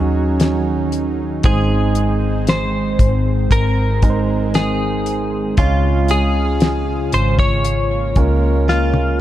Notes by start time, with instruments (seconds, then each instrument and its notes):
Already playing: fingered electric bass D#2, analog synth pad D#3 F#3 C#4, grand piano F#3 C#4 D#4 G#4, clean electric guitar F#4
0.40 snare, closed hi-hat
0.92 closed hi-hat
1.43 fingered electric bass G#1, grand piano G#2 G#3 C4 D#4 C5, analog synth pad G#3 C4, clean electric guitar G#4, kick, closed hi-hat
1.95 closed hi-hat
2.47 clean electric guitar C5, snare, closed hi-hat
2.99 fingered electric bass G#1, kick, closed hi-hat
3.51 fingered electric bass G#1, clean electric guitar A#4, kick, closed hi-hat
4.02 grand piano G#3 C4 D#4 A#4, kick, closed hi-hat
4.10 grand piano C5
4.54 clean electric guitar G#4, snare, closed hi-hat
5.06 closed hi-hat
5.57 fingered electric bass C#2, analog synth pad C#3 F4, grand piano C#3 G#3 C#4 F4 C#5, clean electric guitar F4, kick, closed hi-hat
6.08 clean electric guitar G#4, closed hi-hat
6.60 snare, closed hi-hat
7.12 fingered electric bass G#1, clean electric guitar C5, closed hi-hat
7.39 clean electric guitar C#5, kick
7.64 analog synth pad A#3, closed hi-hat
8.16 fingered electric bass C#2, grand piano G#3 C#4 F4 A#4, kick, closed hi-hat
8.69 clean electric guitar F4, snare
8.94 high tom